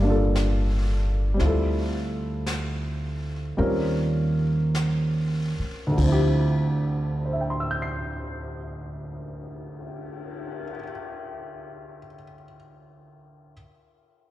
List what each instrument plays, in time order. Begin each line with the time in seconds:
Already playing: upright bass G1
0.00 grand piano G3 A#3
0.04 grand piano D4 F4
0.10 grand piano A4
0.35 brush sweep, snare, hi-hat pedal
1.34 grand piano G3 C4
1.40 upright bass D2, grand piano E4 F4, brush sweep, snare
1.46 grand piano A4
2.46 brush sweep, snare, hi-hat pedal
3.57 upright bass D#2, grand piano G3 C4 C#4 F4 A#4, brush sweep
4.75 brush sweep, snare, hi-hat pedal
5.59 muted upright bass stroke
5.87 grand piano D2
5.92 grand piano D3
5.97 upright bass D2, grand piano F3, kick, crash
6.02 grand piano C4
6.07 grand piano E4
6.12 grand piano G4
6.85 cymbal swell
7.25 grand piano C5
7.33 grand piano E5
7.41 grand piano G5
7.50 grand piano C6
7.60 grand piano E6
7.71 grand piano G6
7.82 grand piano C7